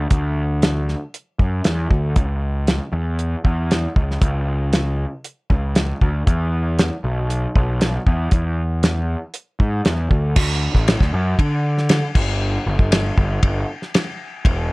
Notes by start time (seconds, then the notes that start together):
0.10 D2, kick, closed hi-hat
0.62 snare, closed hi-hat
0.88 snare
1.14 closed hi-hat
1.39 F#2, kick
1.64 E2, snare, closed hi-hat
1.90 D2, kick
2.16 C#2, kick, closed hi-hat
2.67 snare, closed hi-hat
2.93 E2
3.19 closed hi-hat
3.45 E2, kick
3.71 snare, closed hi-hat
3.96 C#2, kick
4.11 snare
4.22 C#2, kick, closed hi-hat
4.73 snare, closed hi-hat
5.24 closed hi-hat
5.50 C#2, kick
5.75 snare, closed hi-hat
6.01 D2, kick
6.27 E2, kick, closed hi-hat
6.79 snare, closed hi-hat
7.04 B1
7.30 closed hi-hat
7.56 B1, kick
7.81 snare, closed hi-hat
8.06 E2, kick
8.31 E2, kick, closed hi-hat
8.83 snare, closed hi-hat
9.34 closed hi-hat
9.60 G#2, kick
9.85 E2, snare, closed hi-hat
10.11 D2, kick
10.36 D2, kick, crash
10.74 A1, kick, snare
10.88 snare, ride bell
11.00 D2, kick, snare
11.14 F#2
11.39 D3, kick, ride bell
11.78 snare
11.89 snare, ride bell
12.15 G1, kick, crash
12.66 G1
12.79 G1, kick
12.92 snare, ride bell
13.17 G1, kick
13.43 G1, kick, ride bell
13.82 snare
13.94 snare, ride bell
14.45 E1, kick, ride bell